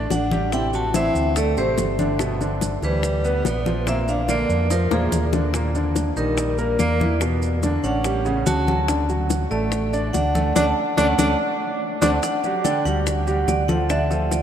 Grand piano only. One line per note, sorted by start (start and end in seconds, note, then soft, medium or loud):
0.00 0.24 D4 medium
0.00 0.25 D5 medium
0.32 0.49 G3 medium
0.32 0.49 G4 medium
0.53 0.87 C3 medium
0.53 0.87 C4 medium
0.94 1.29 E3 medium
0.94 1.29 E4 medium
1.37 1.54 A3 medium
1.37 1.54 A4 medium
1.57 1.91 C3 medium
1.57 1.92 C4 medium
1.99 2.16 D3 medium
1.99 2.16 D4 medium
2.19 2.37 B2 medium
2.19 2.37 B3 medium
2.41 2.75 D3 medium
2.41 2.75 D4 medium
2.83 3.17 E3 medium
2.83 3.17 E4 medium
3.24 3.58 B3 medium
3.24 3.59 B4 medium
3.66 3.83 F3 medium
3.66 3.83 F4 medium
3.86 4.21 A#2 medium
3.86 4.21 A#3 medium
4.28 4.63 D3 medium
4.28 4.63 D4 medium
4.70 4.87 F3 medium
4.70 4.88 F4 medium
4.91 5.25 A#2 medium
4.91 5.26 A#3 medium
5.33 5.50 D3 medium
5.33 5.51 D4 medium
5.54 5.71 A#2 medium
5.54 5.72 A#3 medium
5.75 6.09 D3 medium
5.75 6.10 D4 medium
6.17 6.51 D#3 medium
6.17 6.51 D#4 medium
6.58 6.93 A#3 medium
6.58 6.93 A#4 medium
7.00 7.17 E3 medium
7.00 7.17 E4 medium
7.21 7.55 B2 medium
7.21 7.56 B3 medium
7.63 7.97 D3 medium
7.63 7.97 D4 medium
8.05 8.22 G3 medium
8.05 8.22 G4 medium
8.25 8.60 C#3 medium
8.25 8.60 C#4 medium
8.68 8.85 F#3 medium
8.68 8.85 F#4 medium
8.88 9.06 D3 medium
8.88 9.06 D4 medium
9.09 9.43 F#3 medium
9.09 9.44 F#4 medium
9.51 9.86 A3 medium
9.51 9.86 A4 medium
9.93 10.27 D4 medium
9.93 10.28 D5 medium
10.35 10.52 A3 medium
10.35 10.52 A4 medium
10.56 10.69 A3 medium
10.56 10.69 C#4 medium
10.56 10.69 D4 medium
10.97 11.11 A3 medium
10.97 11.11 C#4 loud
10.97 11.11 D4 loud
11.18 11.32 A3 medium
11.18 11.32 C#4 medium
11.18 11.32 D4 medium
12.01 12.15 A3 medium
12.01 12.15 C4 medium
12.01 12.15 D4 medium
12.44 12.61 F#3 medium
12.44 12.61 F#4 medium
12.44 12.62 G4 medium
12.64 12.81 D3 medium
12.64 12.82 D4 medium
12.64 12.82 D5 medium
12.85 13.19 G3 medium
12.85 13.20 F#4 medium
12.85 13.20 G4 medium
13.27 13.61 G3 medium
13.27 13.61 F#4 medium
13.27 13.61 G4 medium
13.69 13.86 F3 medium
13.69 13.86 F4 medium
13.69 13.86 A4 medium
13.90 14.07 D3 medium
13.90 14.07 D4 medium
13.90 14.07 D5 medium
14.10 14.42 F3 medium
14.10 14.42 F4 medium
14.10 14.42 A4 medium